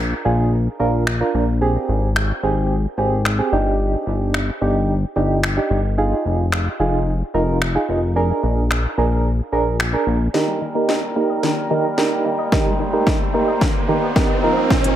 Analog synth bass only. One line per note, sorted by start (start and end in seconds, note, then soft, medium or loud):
0.00 0.14 A#1 medium
0.25 0.68 A#1 medium
0.80 1.23 A#1 loud
1.34 1.78 A#1 medium
1.89 2.32 G#1 medium
2.43 2.87 G#1 medium
2.98 3.41 G#1 loud
3.52 3.96 G1 medium
4.07 4.50 G1 medium
4.61 5.05 G1 medium
5.16 5.59 G1 loud
5.71 6.14 G1 medium
6.25 6.68 F1 medium
6.80 7.23 F1 medium
7.34 7.78 F1 loud
7.89 8.32 F1 medium
8.43 8.87 A#1 medium
8.98 9.41 A#1 medium
9.52 9.96 A#1 loud
10.07 10.29 A#1 medium